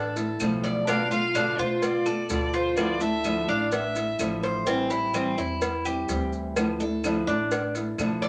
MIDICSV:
0, 0, Header, 1, 7, 480
1, 0, Start_track
1, 0, Tempo, 473934
1, 889, Time_signature, 4, 2, 24, 8
1, 8393, End_track
2, 0, Start_track
2, 0, Title_t, "Violin"
2, 0, Program_c, 0, 40
2, 0, Note_on_c, 0, 69, 80
2, 611, Note_off_c, 0, 69, 0
2, 889, Note_on_c, 0, 77, 110
2, 1112, Note_off_c, 0, 77, 0
2, 1123, Note_on_c, 0, 77, 119
2, 1603, Note_on_c, 0, 72, 98
2, 1619, Note_off_c, 0, 77, 0
2, 1848, Note_on_c, 0, 74, 95
2, 1863, Note_off_c, 0, 72, 0
2, 2329, Note_off_c, 0, 74, 0
2, 2336, Note_on_c, 0, 74, 96
2, 2579, Note_on_c, 0, 72, 105
2, 2594, Note_off_c, 0, 74, 0
2, 2808, Note_off_c, 0, 72, 0
2, 2815, Note_on_c, 0, 74, 105
2, 3051, Note_on_c, 0, 76, 111
2, 3066, Note_off_c, 0, 74, 0
2, 3535, Note_on_c, 0, 77, 100
2, 3550, Note_off_c, 0, 76, 0
2, 3768, Note_off_c, 0, 77, 0
2, 3774, Note_on_c, 0, 76, 95
2, 4451, Note_off_c, 0, 76, 0
2, 8393, End_track
3, 0, Start_track
3, 0, Title_t, "Cuban tres"
3, 0, Program_c, 1, 25
3, 0, Note_on_c, 1, 62, 98
3, 154, Note_off_c, 1, 62, 0
3, 644, Note_on_c, 1, 74, 77
3, 880, Note_off_c, 1, 74, 0
3, 884, Note_on_c, 1, 62, 84
3, 1119, Note_off_c, 1, 62, 0
3, 1124, Note_on_c, 1, 65, 78
3, 1360, Note_off_c, 1, 65, 0
3, 1367, Note_on_c, 1, 62, 84
3, 1601, Note_off_c, 1, 62, 0
3, 1612, Note_on_c, 1, 65, 85
3, 2076, Note_off_c, 1, 65, 0
3, 2088, Note_on_c, 1, 69, 67
3, 2554, Note_off_c, 1, 69, 0
3, 2569, Note_on_c, 1, 65, 77
3, 3035, Note_off_c, 1, 65, 0
3, 3049, Note_on_c, 1, 69, 79
3, 3515, Note_off_c, 1, 69, 0
3, 3530, Note_on_c, 1, 62, 85
3, 3995, Note_off_c, 1, 62, 0
3, 4490, Note_on_c, 1, 72, 78
3, 4722, Note_off_c, 1, 72, 0
3, 4726, Note_on_c, 1, 60, 90
3, 4960, Note_off_c, 1, 60, 0
3, 4967, Note_on_c, 1, 64, 80
3, 5201, Note_off_c, 1, 64, 0
3, 5208, Note_on_c, 1, 60, 79
3, 5441, Note_off_c, 1, 60, 0
3, 5449, Note_on_c, 1, 64, 80
3, 5914, Note_off_c, 1, 64, 0
3, 5929, Note_on_c, 1, 67, 72
3, 6394, Note_off_c, 1, 67, 0
3, 6889, Note_on_c, 1, 69, 78
3, 7353, Note_off_c, 1, 69, 0
3, 7366, Note_on_c, 1, 62, 104
3, 7831, Note_off_c, 1, 62, 0
3, 8325, Note_on_c, 1, 74, 86
3, 8393, Note_off_c, 1, 74, 0
3, 8393, End_track
4, 0, Start_track
4, 0, Title_t, "Nylon-string guitar"
4, 0, Program_c, 2, 24
4, 160, Note_on_c, 2, 64, 49
4, 175, Note_on_c, 2, 62, 44
4, 183, Note_on_c, 2, 57, 36
4, 395, Note_off_c, 2, 64, 0
4, 402, Note_off_c, 2, 62, 0
4, 405, Note_on_c, 2, 50, 64
4, 407, Note_off_c, 2, 57, 0
4, 414, Note_on_c, 2, 53, 79
4, 419, Note_on_c, 2, 57, 78
4, 425, Note_on_c, 2, 62, 72
4, 431, Note_on_c, 2, 64, 69
4, 877, Note_off_c, 2, 50, 0
4, 882, Note_off_c, 2, 53, 0
4, 882, Note_on_c, 2, 47, 74
4, 885, Note_off_c, 2, 57, 0
4, 888, Note_off_c, 2, 62, 0
4, 889, Note_on_c, 2, 50, 73
4, 890, Note_off_c, 2, 64, 0
4, 896, Note_on_c, 2, 57, 81
4, 901, Note_on_c, 2, 59, 78
4, 904, Note_on_c, 2, 65, 84
4, 1110, Note_off_c, 2, 65, 0
4, 1116, Note_off_c, 2, 47, 0
4, 1119, Note_off_c, 2, 50, 0
4, 1122, Note_on_c, 2, 65, 51
4, 1123, Note_off_c, 2, 57, 0
4, 1125, Note_off_c, 2, 59, 0
4, 1137, Note_on_c, 2, 59, 49
4, 1146, Note_on_c, 2, 57, 41
4, 1356, Note_off_c, 2, 65, 0
4, 1364, Note_off_c, 2, 59, 0
4, 1366, Note_on_c, 2, 47, 82
4, 1368, Note_off_c, 2, 57, 0
4, 1373, Note_on_c, 2, 50, 84
4, 1378, Note_on_c, 2, 57, 91
4, 1385, Note_on_c, 2, 59, 87
4, 1391, Note_on_c, 2, 65, 87
4, 1587, Note_off_c, 2, 65, 0
4, 1598, Note_off_c, 2, 47, 0
4, 1599, Note_on_c, 2, 65, 53
4, 1600, Note_off_c, 2, 59, 0
4, 1602, Note_off_c, 2, 50, 0
4, 1604, Note_off_c, 2, 57, 0
4, 1612, Note_on_c, 2, 59, 46
4, 1625, Note_on_c, 2, 57, 37
4, 1835, Note_off_c, 2, 65, 0
4, 1840, Note_off_c, 2, 57, 0
4, 1841, Note_off_c, 2, 59, 0
4, 2081, Note_on_c, 2, 65, 48
4, 2094, Note_on_c, 2, 59, 42
4, 2105, Note_on_c, 2, 57, 41
4, 2316, Note_off_c, 2, 65, 0
4, 2319, Note_on_c, 2, 47, 68
4, 2320, Note_off_c, 2, 57, 0
4, 2322, Note_off_c, 2, 59, 0
4, 2328, Note_on_c, 2, 50, 65
4, 2333, Note_on_c, 2, 57, 81
4, 2339, Note_on_c, 2, 59, 84
4, 2343, Note_on_c, 2, 65, 72
4, 2787, Note_off_c, 2, 50, 0
4, 2795, Note_off_c, 2, 47, 0
4, 2799, Note_off_c, 2, 57, 0
4, 2799, Note_on_c, 2, 50, 84
4, 2803, Note_on_c, 2, 53, 73
4, 2805, Note_off_c, 2, 59, 0
4, 2807, Note_off_c, 2, 65, 0
4, 2811, Note_on_c, 2, 57, 73
4, 2818, Note_on_c, 2, 62, 81
4, 2821, Note_on_c, 2, 64, 91
4, 3032, Note_off_c, 2, 64, 0
4, 3035, Note_off_c, 2, 50, 0
4, 3037, Note_off_c, 2, 53, 0
4, 3041, Note_off_c, 2, 57, 0
4, 3044, Note_off_c, 2, 62, 0
4, 3044, Note_on_c, 2, 64, 50
4, 3055, Note_on_c, 2, 62, 45
4, 3066, Note_on_c, 2, 57, 48
4, 3277, Note_off_c, 2, 64, 0
4, 3279, Note_on_c, 2, 50, 81
4, 3282, Note_off_c, 2, 57, 0
4, 3283, Note_off_c, 2, 62, 0
4, 3290, Note_on_c, 2, 53, 79
4, 3294, Note_on_c, 2, 57, 77
4, 3299, Note_on_c, 2, 62, 76
4, 3305, Note_on_c, 2, 64, 79
4, 3509, Note_off_c, 2, 64, 0
4, 3515, Note_off_c, 2, 50, 0
4, 3520, Note_off_c, 2, 53, 0
4, 3521, Note_on_c, 2, 64, 46
4, 3522, Note_off_c, 2, 57, 0
4, 3523, Note_off_c, 2, 62, 0
4, 3535, Note_on_c, 2, 62, 39
4, 3545, Note_on_c, 2, 57, 43
4, 3755, Note_off_c, 2, 57, 0
4, 3756, Note_off_c, 2, 62, 0
4, 3756, Note_off_c, 2, 64, 0
4, 4000, Note_on_c, 2, 64, 47
4, 4012, Note_on_c, 2, 62, 40
4, 4023, Note_on_c, 2, 57, 34
4, 4235, Note_off_c, 2, 64, 0
4, 4238, Note_on_c, 2, 50, 65
4, 4240, Note_off_c, 2, 57, 0
4, 4241, Note_off_c, 2, 62, 0
4, 4249, Note_on_c, 2, 53, 68
4, 4252, Note_on_c, 2, 57, 80
4, 4259, Note_on_c, 2, 62, 70
4, 4263, Note_on_c, 2, 64, 77
4, 4714, Note_off_c, 2, 50, 0
4, 4715, Note_off_c, 2, 53, 0
4, 4719, Note_on_c, 2, 52, 74
4, 4721, Note_off_c, 2, 57, 0
4, 4724, Note_off_c, 2, 62, 0
4, 4726, Note_off_c, 2, 64, 0
4, 4730, Note_on_c, 2, 55, 72
4, 4737, Note_on_c, 2, 60, 83
4, 4744, Note_on_c, 2, 64, 74
4, 4949, Note_off_c, 2, 64, 0
4, 4954, Note_off_c, 2, 52, 0
4, 4959, Note_off_c, 2, 55, 0
4, 4961, Note_off_c, 2, 60, 0
4, 4961, Note_on_c, 2, 64, 51
4, 4973, Note_on_c, 2, 60, 44
4, 4985, Note_on_c, 2, 55, 42
4, 5195, Note_off_c, 2, 64, 0
4, 5197, Note_off_c, 2, 55, 0
4, 5201, Note_off_c, 2, 60, 0
4, 5201, Note_on_c, 2, 52, 80
4, 5209, Note_on_c, 2, 55, 84
4, 5219, Note_on_c, 2, 60, 79
4, 5225, Note_on_c, 2, 64, 86
4, 5429, Note_off_c, 2, 64, 0
4, 5435, Note_off_c, 2, 52, 0
4, 5439, Note_off_c, 2, 55, 0
4, 5441, Note_off_c, 2, 60, 0
4, 5441, Note_on_c, 2, 64, 48
4, 5453, Note_on_c, 2, 60, 47
4, 5464, Note_on_c, 2, 55, 43
4, 5675, Note_off_c, 2, 64, 0
4, 5678, Note_off_c, 2, 55, 0
4, 5681, Note_off_c, 2, 60, 0
4, 5922, Note_on_c, 2, 64, 47
4, 5934, Note_on_c, 2, 60, 48
4, 5945, Note_on_c, 2, 55, 37
4, 6155, Note_off_c, 2, 64, 0
4, 6161, Note_off_c, 2, 55, 0
4, 6161, Note_off_c, 2, 60, 0
4, 6163, Note_on_c, 2, 52, 69
4, 6173, Note_on_c, 2, 55, 81
4, 6179, Note_on_c, 2, 60, 82
4, 6185, Note_on_c, 2, 64, 79
4, 6635, Note_off_c, 2, 52, 0
4, 6640, Note_off_c, 2, 55, 0
4, 6643, Note_off_c, 2, 60, 0
4, 6644, Note_on_c, 2, 50, 69
4, 6646, Note_off_c, 2, 64, 0
4, 6653, Note_on_c, 2, 53, 70
4, 6656, Note_on_c, 2, 57, 79
4, 6661, Note_on_c, 2, 62, 78
4, 6667, Note_on_c, 2, 64, 75
4, 6876, Note_off_c, 2, 50, 0
4, 6876, Note_off_c, 2, 64, 0
4, 6880, Note_off_c, 2, 53, 0
4, 6882, Note_off_c, 2, 57, 0
4, 6884, Note_off_c, 2, 62, 0
4, 6888, Note_on_c, 2, 64, 45
4, 6902, Note_on_c, 2, 62, 52
4, 6913, Note_on_c, 2, 57, 47
4, 7118, Note_off_c, 2, 64, 0
4, 7125, Note_off_c, 2, 62, 0
4, 7126, Note_off_c, 2, 57, 0
4, 7126, Note_on_c, 2, 50, 78
4, 7133, Note_on_c, 2, 53, 79
4, 7138, Note_on_c, 2, 57, 86
4, 7142, Note_on_c, 2, 62, 83
4, 7147, Note_on_c, 2, 64, 89
4, 7353, Note_off_c, 2, 64, 0
4, 7356, Note_off_c, 2, 50, 0
4, 7360, Note_off_c, 2, 53, 0
4, 7362, Note_off_c, 2, 57, 0
4, 7365, Note_off_c, 2, 62, 0
4, 7365, Note_on_c, 2, 64, 51
4, 7379, Note_on_c, 2, 62, 40
4, 7388, Note_on_c, 2, 57, 42
4, 7596, Note_off_c, 2, 64, 0
4, 7603, Note_off_c, 2, 62, 0
4, 7607, Note_off_c, 2, 57, 0
4, 7851, Note_on_c, 2, 64, 47
4, 7864, Note_on_c, 2, 62, 42
4, 7875, Note_on_c, 2, 57, 34
4, 8079, Note_off_c, 2, 64, 0
4, 8084, Note_on_c, 2, 50, 72
4, 8085, Note_off_c, 2, 57, 0
4, 8085, Note_off_c, 2, 62, 0
4, 8093, Note_on_c, 2, 53, 71
4, 8097, Note_on_c, 2, 57, 78
4, 8105, Note_on_c, 2, 62, 83
4, 8109, Note_on_c, 2, 64, 74
4, 8393, Note_off_c, 2, 50, 0
4, 8393, Note_off_c, 2, 53, 0
4, 8393, Note_off_c, 2, 57, 0
4, 8393, Note_off_c, 2, 62, 0
4, 8393, Note_off_c, 2, 64, 0
4, 8393, End_track
5, 0, Start_track
5, 0, Title_t, "Upright bass"
5, 0, Program_c, 3, 32
5, 0, Note_on_c, 3, 33, 95
5, 368, Note_off_c, 3, 33, 0
5, 411, Note_on_c, 3, 35, 93
5, 1546, Note_off_c, 3, 35, 0
5, 1607, Note_on_c, 3, 47, 85
5, 2288, Note_off_c, 3, 47, 0
5, 2327, Note_on_c, 3, 38, 97
5, 3464, Note_off_c, 3, 38, 0
5, 3529, Note_on_c, 3, 33, 86
5, 4208, Note_off_c, 3, 33, 0
5, 4247, Note_on_c, 3, 33, 91
5, 5383, Note_off_c, 3, 33, 0
5, 5450, Note_on_c, 3, 40, 94
5, 6128, Note_off_c, 3, 40, 0
5, 6168, Note_on_c, 3, 38, 102
5, 7302, Note_off_c, 3, 38, 0
5, 7368, Note_on_c, 3, 33, 90
5, 8046, Note_off_c, 3, 33, 0
5, 8085, Note_on_c, 3, 35, 95
5, 8393, Note_off_c, 3, 35, 0
5, 8393, End_track
6, 0, Start_track
6, 0, Title_t, "Muted nylon-string guitar strokes"
6, 1845, Note_on_c, 9, 29, 67
6, 1946, Note_off_c, 9, 29, 0
6, 3759, Note_on_c, 9, 29, 64
6, 3860, Note_off_c, 9, 29, 0
6, 5684, Note_on_c, 9, 29, 65
6, 5785, Note_off_c, 9, 29, 0
6, 7615, Note_on_c, 9, 29, 61
6, 7716, Note_off_c, 9, 29, 0
6, 8393, End_track
7, 0, Start_track
7, 0, Title_t, "Drums"
7, 164, Note_on_c, 9, 70, 68
7, 168, Note_on_c, 9, 56, 71
7, 265, Note_off_c, 9, 70, 0
7, 269, Note_off_c, 9, 56, 0
7, 403, Note_on_c, 9, 70, 85
7, 406, Note_on_c, 9, 75, 70
7, 415, Note_on_c, 9, 56, 64
7, 505, Note_off_c, 9, 70, 0
7, 508, Note_off_c, 9, 75, 0
7, 516, Note_off_c, 9, 56, 0
7, 646, Note_on_c, 9, 70, 28
7, 652, Note_on_c, 9, 56, 76
7, 747, Note_off_c, 9, 70, 0
7, 754, Note_off_c, 9, 56, 0
7, 886, Note_on_c, 9, 70, 75
7, 892, Note_on_c, 9, 56, 105
7, 987, Note_off_c, 9, 70, 0
7, 994, Note_off_c, 9, 56, 0
7, 1127, Note_on_c, 9, 70, 59
7, 1228, Note_off_c, 9, 70, 0
7, 1366, Note_on_c, 9, 70, 65
7, 1367, Note_on_c, 9, 75, 65
7, 1371, Note_on_c, 9, 56, 75
7, 1467, Note_off_c, 9, 70, 0
7, 1468, Note_off_c, 9, 75, 0
7, 1473, Note_off_c, 9, 56, 0
7, 1605, Note_on_c, 9, 70, 33
7, 1706, Note_off_c, 9, 70, 0
7, 1845, Note_on_c, 9, 70, 68
7, 1847, Note_on_c, 9, 56, 101
7, 1946, Note_off_c, 9, 70, 0
7, 1949, Note_off_c, 9, 56, 0
7, 2084, Note_on_c, 9, 70, 60
7, 2084, Note_on_c, 9, 75, 69
7, 2186, Note_off_c, 9, 70, 0
7, 2186, Note_off_c, 9, 75, 0
7, 2323, Note_on_c, 9, 70, 80
7, 2332, Note_on_c, 9, 56, 75
7, 2424, Note_off_c, 9, 70, 0
7, 2434, Note_off_c, 9, 56, 0
7, 2565, Note_on_c, 9, 70, 28
7, 2666, Note_off_c, 9, 70, 0
7, 2803, Note_on_c, 9, 70, 85
7, 2811, Note_on_c, 9, 56, 103
7, 2811, Note_on_c, 9, 75, 60
7, 2904, Note_off_c, 9, 70, 0
7, 2912, Note_off_c, 9, 56, 0
7, 2912, Note_off_c, 9, 75, 0
7, 3043, Note_on_c, 9, 70, 63
7, 3144, Note_off_c, 9, 70, 0
7, 3280, Note_on_c, 9, 70, 73
7, 3291, Note_on_c, 9, 75, 69
7, 3294, Note_on_c, 9, 56, 73
7, 3382, Note_off_c, 9, 70, 0
7, 3392, Note_off_c, 9, 75, 0
7, 3396, Note_off_c, 9, 56, 0
7, 3528, Note_on_c, 9, 70, 32
7, 3629, Note_off_c, 9, 70, 0
7, 3762, Note_on_c, 9, 70, 71
7, 3773, Note_on_c, 9, 56, 114
7, 3864, Note_off_c, 9, 70, 0
7, 3874, Note_off_c, 9, 56, 0
7, 4005, Note_on_c, 9, 70, 70
7, 4014, Note_on_c, 9, 56, 69
7, 4107, Note_off_c, 9, 70, 0
7, 4116, Note_off_c, 9, 56, 0
7, 4245, Note_on_c, 9, 70, 87
7, 4248, Note_on_c, 9, 75, 68
7, 4256, Note_on_c, 9, 56, 73
7, 4346, Note_off_c, 9, 70, 0
7, 4349, Note_off_c, 9, 75, 0
7, 4358, Note_off_c, 9, 56, 0
7, 4488, Note_on_c, 9, 70, 31
7, 4492, Note_on_c, 9, 56, 68
7, 4589, Note_off_c, 9, 70, 0
7, 4593, Note_off_c, 9, 56, 0
7, 4724, Note_on_c, 9, 70, 74
7, 4731, Note_on_c, 9, 56, 105
7, 4825, Note_off_c, 9, 70, 0
7, 4832, Note_off_c, 9, 56, 0
7, 4963, Note_on_c, 9, 70, 57
7, 5064, Note_off_c, 9, 70, 0
7, 5203, Note_on_c, 9, 70, 69
7, 5209, Note_on_c, 9, 75, 72
7, 5212, Note_on_c, 9, 56, 77
7, 5305, Note_off_c, 9, 70, 0
7, 5310, Note_off_c, 9, 75, 0
7, 5313, Note_off_c, 9, 56, 0
7, 5447, Note_on_c, 9, 70, 32
7, 5549, Note_off_c, 9, 70, 0
7, 5685, Note_on_c, 9, 70, 73
7, 5690, Note_on_c, 9, 56, 115
7, 5786, Note_off_c, 9, 70, 0
7, 5791, Note_off_c, 9, 56, 0
7, 5926, Note_on_c, 9, 70, 64
7, 5930, Note_on_c, 9, 75, 68
7, 6028, Note_off_c, 9, 70, 0
7, 6031, Note_off_c, 9, 75, 0
7, 6165, Note_on_c, 9, 70, 81
7, 6167, Note_on_c, 9, 56, 72
7, 6267, Note_off_c, 9, 70, 0
7, 6268, Note_off_c, 9, 56, 0
7, 6405, Note_on_c, 9, 70, 32
7, 6507, Note_off_c, 9, 70, 0
7, 6648, Note_on_c, 9, 56, 120
7, 6648, Note_on_c, 9, 70, 86
7, 6652, Note_on_c, 9, 75, 69
7, 6749, Note_off_c, 9, 56, 0
7, 6750, Note_off_c, 9, 70, 0
7, 6753, Note_off_c, 9, 75, 0
7, 6887, Note_on_c, 9, 70, 60
7, 6989, Note_off_c, 9, 70, 0
7, 7130, Note_on_c, 9, 56, 78
7, 7130, Note_on_c, 9, 70, 77
7, 7132, Note_on_c, 9, 75, 76
7, 7232, Note_off_c, 9, 56, 0
7, 7232, Note_off_c, 9, 70, 0
7, 7233, Note_off_c, 9, 75, 0
7, 7368, Note_on_c, 9, 70, 33
7, 7470, Note_off_c, 9, 70, 0
7, 7609, Note_on_c, 9, 70, 72
7, 7612, Note_on_c, 9, 56, 114
7, 7711, Note_off_c, 9, 70, 0
7, 7713, Note_off_c, 9, 56, 0
7, 7848, Note_on_c, 9, 56, 71
7, 7852, Note_on_c, 9, 70, 65
7, 7949, Note_off_c, 9, 56, 0
7, 7953, Note_off_c, 9, 70, 0
7, 8086, Note_on_c, 9, 56, 70
7, 8091, Note_on_c, 9, 70, 82
7, 8091, Note_on_c, 9, 75, 72
7, 8187, Note_off_c, 9, 56, 0
7, 8192, Note_off_c, 9, 70, 0
7, 8192, Note_off_c, 9, 75, 0
7, 8329, Note_on_c, 9, 56, 73
7, 8330, Note_on_c, 9, 70, 32
7, 8393, Note_off_c, 9, 56, 0
7, 8393, Note_off_c, 9, 70, 0
7, 8393, End_track
0, 0, End_of_file